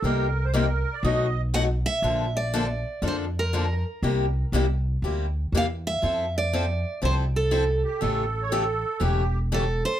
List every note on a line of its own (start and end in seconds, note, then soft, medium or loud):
0.02 0.83 C2 medium
0.02 0.25 C3 medium
0.02 0.25 G3 medium
0.02 0.26 A#3 medium
0.02 0.26 D#4 medium
0.02 0.26 G4 medium
0.02 0.46 A#4 medium
0.44 0.54 C5 medium
0.53 0.65 C3 medium
0.53 0.65 G3 medium
0.53 0.65 A#3 loud
0.53 0.65 D#4 loud
0.53 0.65 G4 medium
0.53 0.95 A#4 medium
0.94 1.03 D5 medium
1.03 1.83 B1 medium
1.03 1.26 B2 medium
1.03 1.26 F#3 medium
1.03 1.25 A3 medium
1.03 1.26 D#4 medium
1.03 1.26 F#4 medium
1.03 1.41 D#5 medium
1.54 1.65 B2 medium
1.54 1.65 F#3 medium
1.54 1.66 A3 medium
1.54 1.65 D#4 medium
1.54 1.66 F#4 medium
1.54 1.63 F#5 loud
1.86 2.36 E5 medium
2.02 2.82 A#1 medium
2.02 2.25 D3 medium
2.02 2.25 F3 medium
2.02 2.25 A#3 medium
2.02 2.25 D4 medium
2.02 2.25 A4 medium
2.37 3.06 D5 medium
2.54 2.65 D3 medium
2.54 2.65 F3 medium
2.54 2.65 A#3 loud
2.54 2.65 D4 loud
2.54 2.65 A4 loud
3.02 3.82 F2 medium
3.02 3.24 D3 medium
3.02 3.24 F3 medium
3.02 3.24 A#3 medium
3.02 3.25 D4 medium
3.02 3.25 A4 medium
3.08 3.16 C5 medium
3.39 3.83 A#4 medium
3.53 3.64 D3 medium
3.53 3.64 F3 medium
3.53 3.65 A#3 medium
3.53 3.65 D4 medium
3.53 3.65 A4 medium
4.02 4.42 C2 medium
4.02 4.25 C3 medium
4.02 4.25 G3 medium
4.02 4.25 A#3 medium
4.02 4.25 E4 medium
4.02 4.25 G4 medium
4.52 4.95 C2 medium
4.52 4.64 C3 medium
4.52 4.65 G3 loud
4.52 4.65 A#3 medium
4.52 4.65 E4 loud
4.52 4.65 G4 loud
5.02 5.45 D2 medium
5.02 5.25 C3 medium
5.02 5.25 G3 medium
5.02 5.25 A#3 medium
5.02 5.25 E4 medium
5.02 5.25 G4 medium
5.52 5.95 E2 medium
5.52 5.65 C3 medium
5.52 5.65 G3 medium
5.52 5.65 A#3 medium
5.52 5.65 E4 medium
5.52 5.65 G4 medium
5.57 5.65 F5 medium
5.87 6.37 E5 loud
6.02 6.82 F2 medium
6.02 6.24 F3 medium
6.02 6.24 C4 medium
6.02 6.24 E4 medium
6.02 6.25 A4 medium
6.38 7.00 D5 medium
6.53 6.64 F3 medium
6.53 6.64 C4 medium
6.53 6.64 E4 medium
6.53 6.65 A4 medium
7.02 7.82 C2 medium
7.02 7.23 F3 medium
7.02 7.24 C4 medium
7.02 7.24 E4 medium
7.02 7.24 A4 medium
7.02 7.13 C5 medium
7.36 7.82 A4 medium
7.51 7.63 F3 medium
7.51 7.63 C4 medium
7.51 7.63 E4 medium
7.51 7.63 A4 medium
7.84 8.01 G4 medium
8.00 8.82 A1 medium
8.00 8.23 C#3 medium
8.00 8.23 E3 medium
8.00 8.23 A3 medium
8.00 8.23 C#4 medium
8.00 8.23 G4 medium
8.00 8.43 A4 medium
8.43 8.52 C#5 medium
8.49 8.63 C#3 medium
8.49 8.63 E3 medium
8.49 8.63 A3 medium
8.49 8.63 C#4 loud
8.49 8.63 G4 loud
8.49 9.02 A4 medium
9.00 9.81 E1 medium
9.00 9.23 C#3 medium
9.00 9.22 E3 medium
9.00 9.23 A3 medium
9.00 9.23 C#4 medium
9.00 9.39 G4 medium
9.00 9.23 G4 medium
9.52 9.63 C#3 medium
9.52 9.63 E3 medium
9.52 9.63 A3 medium
9.52 9.63 C#4 medium
9.52 9.63 G4 medium
9.52 9.83 A4 medium
9.85 10.00 C5 medium